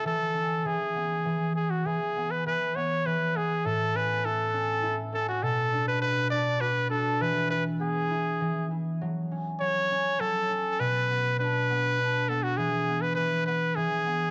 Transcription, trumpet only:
\new Staff \with { instrumentName = "Trumpet" } { \time 3/4 \key e \mixolydian \tempo 4 = 101 a'4 gis'4. gis'16 fis'16 | gis'8. b'16 b'8 cis''8 b'8 gis'8 | a'8 b'8 a'4. a'16 fis'16 | a'8. b'16 b'8 d''8 b'8 a'8 |
b'8 b'8 gis'4. r8 | r4 cis''4 a'4 | b'4 b'4. a'16 fis'16 | gis'8. b'16 b'8 b'8 gis'4 | }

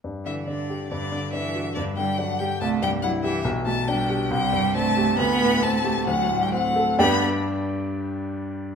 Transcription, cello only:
\new Staff \with { instrumentName = "Cello" } { \clef bass \time 4/4 \key g \major \tempo 4 = 138 r8 e8 d4 d4 e4 | d8 g8 fis8 g8 a8 g8 fis8 e8 | r8 a8 g4 g4 a4 | b4 a4 fis8. g16 fis4 |
b8 r2. r8 | }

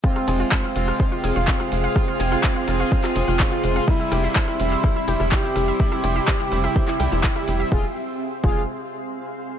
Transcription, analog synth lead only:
\new Staff \with { instrumentName = "Analog synth lead" } { \time 4/4 \key f \minor \tempo 4 = 125 c'4 c'2 c'4~ | c'1 | e'4 e'2 g'4~ | g'1 |
aes'8 r4 aes'8 r2 | }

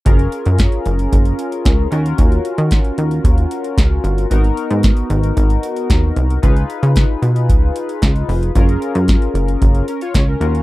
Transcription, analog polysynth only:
\new Staff \with { instrumentName = "Analog polysynth" } { \time 4/4 \key ges \major \tempo 4 = 113 << { r1 | r1 | r1 | r1 |
r2 r8 <des' bes'>16 <f' des''>8 <des' bes'>8 r16 | } \\ { <des' f' aes' bes'>2.~ <des' f' aes' bes'>8 <des' f' ges' bes'>8~ | <des' f' ges' bes'>1 | <ces' ees' ges' bes'>1 | <ees' f' aes' ces''>1 |
<des' f' aes' bes'>2~ <des' f' aes' bes'>8 r4 <des' f' ges' bes'>8 | } >> }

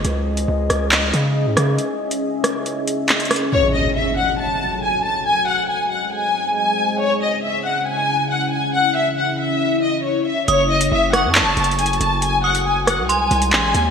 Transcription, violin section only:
\new Staff \with { instrumentName = "Violin section" } { \time 4/4 \key cis \minor \tempo 4 = 138 r1 | r1 | cis''8 dis''8 e''8 fis''8 a''4 gis''8 a''8 | gis''8 fis''8 gis''8 fis''8 gis''4 gis''4 |
cis''8 dis''8 e''8 fis''8 gis''4 fis''8 gis''8 | fis''8 e''8 fis''8 e''4 dis''8 cis''8 e''8 | cis''8 dis''8 e''8 fis''8 a''4 gis''8 a''8 | gis''8 fis''8 gis''8 fis''8 gis''4 gis''4 | }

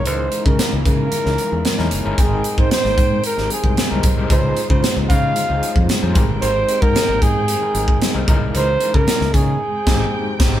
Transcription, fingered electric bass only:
\new Staff \with { instrumentName = "Fingered electric bass" } { \clef bass \time 4/4 \key aes \major \tempo 4 = 113 des,8 r16 des16 r16 des,16 des8 r16 des,16 r16 fes,16 r16 fes,16 ges,,16 g,,16 | aes,,8 r16 aes,16 r16 aes,,16 aes,8 r16 aes,,16 r16 c,16 r16 c,16 ces,16 c,16 | des,8 r16 des16 r16 des,16 des8 r16 des,16 r16 f,16 r16 f,16 aes,,16 g,,16 | aes,,8 r16 aes,16 r16 aes,,16 aes,8. r16 aes,,8 r16 c,16 des,16 c,16 |
des,8 r16 des16 r16 des,16 des8 r8 aes,,8 r8 aes,,8 | }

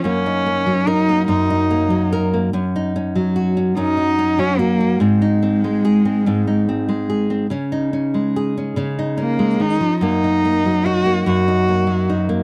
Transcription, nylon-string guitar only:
\new Staff \with { instrumentName = "Nylon-string guitar" } { \time 6/8 \key fis \major \tempo 4. = 48 << { ais16 dis'16 ais8 ais'16 ais16 ais16 dis'16 ais8 ais'16 ais16 | cis'16 dis'16 cis'8 fis'16 cis'16 cis'16 dis'16 cis'8 fis'16 cis'16 | bis16 dis'16 bis8 gis'16 bis16 bis16 dis'16 bis8 gis'16 bis16 | cis'16 dis'16 cis'8 gis'16 cis'16 cis'16 dis'16 cis'4 |
ais16 dis'16 ais8 dis'16 ais16 ais16 dis'16 ais8 dis'16 ais16 | } \\ { fis,8. fis8. fis,8. fis8. | fis,8. fis8. fis,8. fis8. | gis,8. gis8. gis,8. gis8. | cis8. gis8. cis8. gis16 dis16 eis16 |
fis,8. fis8. fis,8. fis8. | } >> }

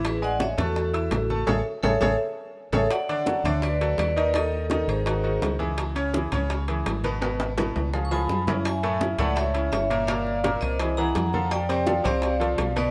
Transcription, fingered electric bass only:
\new Staff \with { instrumentName = "Fingered electric bass" } { \clef bass \time 4/4 \key d \lydian \tempo 4 = 167 a,,4. e,4. a,,4 | a,,8 r8 a,,8 a,,8 r4. a,,8 | r4. d,4. dis,4~ | dis,4. gis,,4. cis,4~ |
cis,4. cis,4. gis,,4~ | gis,,4. cis,4. fis,4~ | fis,4. cis,4. g,,4~ | g,,4. c,4. f,4~ |
f,4. c,4. b,,4 | }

